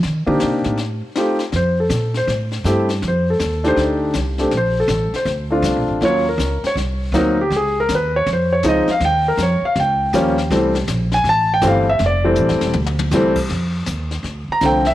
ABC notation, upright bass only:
X:1
M:4/4
L:1/8
Q:"Swing" 1/4=160
K:Fmix
V:1 name="Upright bass" clef=bass
E, D, C, A,,2 z3 | [K:F] F,,2 B,,2 A,,2 G,,2 | F,,2 _E,,2 D,,2 C,,2 | B,,,2 A,,, z D,,2 (3C,, B,,, A,,, |
_E,,2 _D,, z C,,2 =D,,2 | _D,,2 _E,,2 F,,2 D,, z | _E,,2 F,, z _D,,2 E,,2 | C,,2 B,,,2 A,,,2 G,,,2 |
F,,,2 (3A,,, F,,, E,,, D,,2 C,,2 | [K:Cdor] F,,2 E,,2 D,, z C,,2 |]